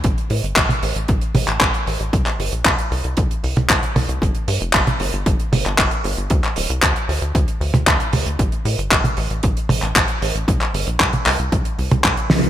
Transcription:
<<
  \new Staff \with { instrumentName = "Analog synth bass" } { \clef bass \time 4/4 \key c \mixolydian \tempo 4 = 115 a,,16 r16 a,16 g,,16 a,,16 r16 a,,16 a,,16 a,,16 r16 a,,16 a,,16 a,,16 r16 a,,16 a,,16 | c,16 r16 g,,16 bes,,16 c,16 r16 c,16 c,16 c,16 r16 c,16 c,16 c,16 r16 c,16 c,16 | g,,16 r16 g,16 f,,16 g,,16 r16 g,,16 g,,16 g,,16 r16 g,,16 g,,16 g,,16 r16 g,,16 g,,16 | d,16 r16 d,,16 c,16 d,16 r16 d,16 d,16 d,16 r16 d,16 d,16 d,16 r16 d,16 d,16 |
a,,16 r16 a,16 g,,16 a,,16 r16 a,,16 a,,16 a,,16 r16 a,,16 a,,16 a,,16 r16 a,,16 a,,16 | c,16 r16 g,,16 bes,,16 c,16 r16 c,16 c,16 c,16 r16 c,16 c,16 c,16 r16 c,16 c,16 | }
  \new DrumStaff \with { instrumentName = "Drums" } \drummode { \time 4/4 <hh bd>16 hh16 hho16 hh16 <hc hh bd>16 <hh tommh>16 hho16 hh16 <hh bd>16 hh16 <hho tommh>16 <hc hh>16 <hc hh bd>16 hh16 hho16 hh16 | <hh bd>16 <hc hh>16 hho16 hh16 <hc hh bd>16 hh16 hho16 hh16 <hh bd>16 hh16 hho16 <hh tommh>16 <hc hh bd>16 hh16 <hho tommh>16 hh16 | <hh bd>16 hh16 hho16 hh16 <hc hh bd>16 <hh tommh>16 hho16 hh16 <hh bd>16 hh16 <hho tommh>16 <hc hh>16 <hc hh bd>16 hh16 hho16 hh16 | <hh bd>16 <hc hh>16 hho16 hh16 <hc hh bd>16 hh16 hho16 hh16 <hh bd>16 hh16 hho16 <hh tommh>16 <hc hh bd>16 hh16 <hho tommh>16 hh16 |
<hh bd>16 hh16 hho16 hh16 <hc hh bd>16 <hh tommh>16 hho16 hh16 <hh bd>16 hh16 <hho tommh>16 <hc hh>16 <hc hh bd>16 hh16 hho16 hh16 | <hh bd>16 <hc hh>16 hho16 hh16 <hc hh bd>16 <hh tommh>16 <hc hho>16 hh16 <hh bd>16 hh16 hho16 <hh tommh>16 <hc hh bd>16 hh16 <hho sn tommh>16 hh16 | }
>>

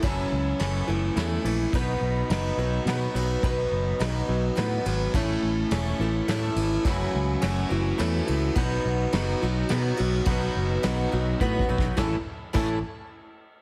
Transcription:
<<
  \new Staff \with { instrumentName = "Twelve-string acoustic guitar" } { \time 3/4 \key b \mixolydian \tempo 4 = 105 <fis, cis e a cis' a'>4 <e a cis' a'>8 <e a cis' a'>8 <e a cis' a'>8 <e a cis' a'>8 | <b, fis b dis' b'>4 <fis b dis' b'>8 <b dis' b'>8 <fis b dis' b'>8 <b dis' b'>8 | <b, fis b dis' b'>4 <fis b dis' b'>4 <fis b dis' b'>8 <b dis' b'>8 | <a, e a cis' e' a'>4 <a cis' e' a'>8 <a cis' e' a'>8 <a cis' e' a'>4 |
<fis, cis e a cis' fis'>4 <e a cis' fis'>8 <e a cis' fis'>8 <e a cis' fis'>4 | <b, fis b dis' fis'>4 <fis b dis' fis'>8 <b dis' fis'>8 <fis b dis' fis'>8 <b dis' fis'>8 | <b, fis b dis' fis'>4 <fis b dis' fis'>8 <b dis' fis'>8 <fis b dis' fis'>8 <b dis' fis'>8 | <a, e a cis' e' a'>8 r8 <a, e a cis' e' a'>8 r4. | }
  \new Staff \with { instrumentName = "Clean electric guitar" } { \clef bass \time 3/4 \key b \mixolydian fis,4 cis'8 e8 a8 e8 | b,4 dis'8 fis8 b8 fis8 | b,4 dis'8 fis8 b8 fis8 | a,4 cis'8 e8 a8 e8 |
fis,4 cis'8 e8 a8 e8 | b,4 dis'8 fis8 b8 fis8 | b,4 dis'8 fis8 b8 fis8 | <a, e a cis' a'>8 r8 <a, e a cis' a'>8 r4. | }
  \new Staff \with { instrumentName = "Fingered electric bass" } { \clef bass \time 3/4 \key b \mixolydian fis,,8 cis,8 fis,,8 fis,,8 e,8 bes,,8 | b,,8 b,,8 fis,,8 b,,8 b,8 b,,8 | b,,8 fis,,8 b,,8 b,,8 a,8 gis,,8 | a,,8 a,,8 e,,8 a,,8 a,8 gis,,8 |
fis,,8 cis,8 fis,,8 fis,,8 e,8 cis,8 | b,,8 b,,8 fis,,8 b,,8 b,8 b,,8 | b,,8 fis,,8 b,,8 b,,8 a,8 b,,8 | a,,8 r8 a,,8 r4. | }
  \new DrumStaff \with { instrumentName = "Drums" } \drummode { \time 3/4 <bd cymr>4 <cymr sn>4 <cymr sn>8 cymr8 | <bd cymr>4 <cymr sn>4 <cymr sn>8 cymr8 | <bd cymr>4 <cymr sn>4 <cymr sn>8 cymr8 | <bd cymr>4 <cymr sn>4 <cymr sn>8 cymr8 |
<bd cymr>4 <cymr sn>4 <cymr sn>8 cymr8 | <bd cymr>4 <cymr sn>4 <cymr sn>8 cymr8 | <bd cymr>4 <cymr sn>4 \tuplet 3/2 { bd8 bd8 bd8 } | <bd sn>4 <cymc bd>4 r4 | }
>>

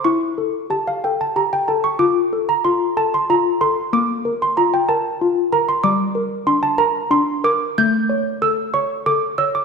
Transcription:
\new Staff \with { instrumentName = "Handbells" } { \time 6/8 \key a \phrygian \tempo 4. = 62 << { cis'''4 a''16 f''16 g''16 a''16 bes''16 g''16 a''16 cis'''16 | d'''8. bes''16 c'''8 a''16 c'''16 bes''8 c'''8 | d'''8. c'''16 bes''16 g''16 a''4 bes''16 c'''16 | d'''4 c'''16 a''16 bes''8 c'''8 d'''8 |
g'''4 e'''8 cis'''8 d'''8 e'''16 d'''16 | } \\ { e'8 a'8 g'8 a'8 g'8 a'8 | f'8 a'8 f'8 a'8 f'8 a'8 | bes8 bes'8 f'8 bes'8 f'8 bes'8 | g8 bes'8 d'8 bes'8 d'8 bes'8 |
a8 cis''8 a'8 cis''8 a'8 cis''8 | } >> }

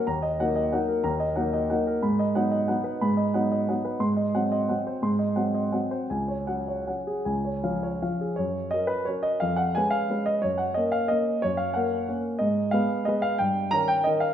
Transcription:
<<
  \new Staff \with { instrumentName = "Grand piano" } { \time 3/4 \key fis \major \tempo 4 = 178 ais''8 dis''8 fis''8 dis''8 fis''8 ais'8 | ais''8 dis''8 fis''8 dis''8 fis''8 ais'8 | b''8 dis''8 fis''8 dis''8 fis''8 b'8 | b''8 dis''8 fis''8 dis''8 fis''8 b'8 |
bis''8 dis''8 fis''8 dis''8 fis''8 bis'8 | bis''8 dis''8 fis''8 dis''8 fis''8 bis'8 | gis''8 cis''8 fis''8 cis''8 fis''8 gis'8 | gis''8 cis''8 eis''8 cis''8 eis''8 gis'8 |
cis''4 dis''8 b'8 cis''8 dis''8 | eis''8 fis''8 gis''8 eis''4 dis''8 | cis''8 fis''8 dis''8 eis''8 dis''4 | cis''8 eis''8 fis''4. r8 |
dis''4 eis''4 dis''8 eis''8 | g''4 ais''8 g''8 dis''8 eis''8 | }
  \new Staff \with { instrumentName = "Grand piano" } { \time 3/4 \key fis \major dis,4 <fis ais dis'>4 <fis ais dis'>4 | dis,4 <fis ais dis'>4 <fis ais dis'>4 | gis,4 <fis b dis'>4 <fis b dis'>4 | gis,4 <fis b dis'>4 <fis b dis'>4 |
gis,4 <fis bis>4 <fis bis>4 | gis,4 <fis bis>4 <fis bis>4 | cis,4 <fis cis'>4 <fis cis'>4 | cis,4 <eis cis'>4 <eis cis'>4 |
fis,4 <fis cis' ais'>4 <fis cis' ais'>4 | eis,4 <gis cis' b'>4 <gis cis' b'>4 | fis,4 <ais cis' ais'>4 <ais cis' ais'>4 | fis,4 <ais cis' ais'>4 <ais cis' ais'>4 |
gis,4 <gis b b'>4 <gis b b'>4 | g,4 <dis cis' ais'>4 <dis cis' ais'>4 | }
>>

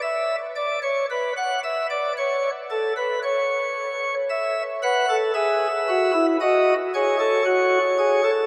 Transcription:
\new Staff \with { instrumentName = "Pipe organ" } { \time 4/4 \key e \mixolydian \tempo 4 = 56 << { e''8 d''16 cis''16 b'16 fis''16 e''16 d''16 cis''8 a'16 b'16 cis''4 | e''8 fis''8 e''4 dis''8 cis''4. | } \\ { r1 | r8 b'16 a'16 gis'8 fis'16 e'16 fis'8 gis'16 a'16 fis'8 gis'16 a'16 | } >> }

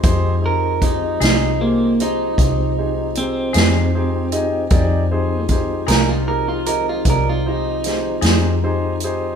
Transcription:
<<
  \new Staff \with { instrumentName = "Grand piano" } { \time 12/8 \key f \dorian \tempo 4. = 51 <ees' g' aes' c''>8 <ees' g' aes' c''>8 <ees' g' aes' c''>8 <ees' g' aes' c''>8 <ees' g' aes' c''>8 <ees' g' aes' c''>8 <ees' g' aes' c''>8 <ees' g' aes' c''>8 <ees' g' aes' c''>8 <ees' g' aes' c''>8 <ees' g' aes' c''>8 <ees' g' aes' ees''>8 | <ees' g' aes' d''>8 <ees' g' aes' c''>8 <ees' g' aes' c''>8 <ees' g' aes' bes'>8 <ees' g' aes' bes'>8 <ees' g' aes' ees''>8 <ees' g' aes' d''>8 <ees' g' aes' c''>8 <ees' g' aes' c''>8 <ees' g' aes' c''>8 <ees' g' aes' c''>8 <ees' g' aes' c''>8 | }
  \new Staff \with { instrumentName = "Clean electric guitar" } { \time 12/8 \key f \dorian r8 bes'8 ees'8 ees'8 bes8 ees'4. c'2~ | c'4 r8 bes'16 f'16 bes'16 f'16 bes'16 f'16 bes'16 f'16 ees'2 r8 | }
  \new Staff \with { instrumentName = "Clean electric guitar" } { \time 12/8 \key f \dorian r4. <f c' ees' aes'>8 r2 r8 <f c' ees' aes'>8 r4 | r4. <f c' ees' aes'>8 r2 r8 <f c' ees' aes'>8 r4 | }
  \new Staff \with { instrumentName = "Tonewheel organ" } { \clef bass \time 12/8 \key f \dorian <f aes c' ees'>1. | <ees f aes c'>1. | }
  \new Staff \with { instrumentName = "Fingered electric bass" } { \clef bass \time 12/8 \key f \dorian f,4. c,4. c,4. f,4. | f,4. c,4. c,4. f,4. | }
  \new DrumStaff \with { instrumentName = "Drums" } \drummode { \time 12/8 <hh bd>4 <hh bd>8 <hh sn>4 hh8 <hh bd>4 hh8 <hh sn>4 hh8 | <hh bd>4 <hh bd>8 <hh sn>4 hh8 <hh bd>4 <hh sn>8 <hh sn>4 hh8 | }
>>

